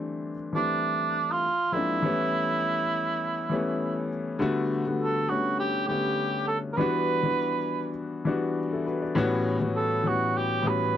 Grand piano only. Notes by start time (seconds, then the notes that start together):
Already playing: E3 G3 A3 C4 D4
0.53 E3 G3 A3 C4 E4
1.72 F3 G#3 A#3 C4 D4
2.02 E3 G3 A3 B3 C#4
3.50 E3 G3 A3 B3 C#4
4.39 D3 G3 A3 B3 F#4
4.85 D3 G3 A3 B3 F#4
5.29 D3 G3 A3 B3 C#4
5.88 D3 G3 A3 B3 C#4
6.77 E3 G3 B3 D4 F#4
7.23 E3 G3 B3 D4 F#4
8.25 E3 G3 B3 D4 F#4
8.73 E4 A4
8.86 F#4 B4
9.02 A4 D5
9.15 A2 E3 G3 B3 C#4 F#4
9.59 A2 E3 G3 B3 C#4 F#4
10.03 A2 E3 G3 B3 C#4 F#4
10.62 A2 E3 G3 B3 C#4 F#4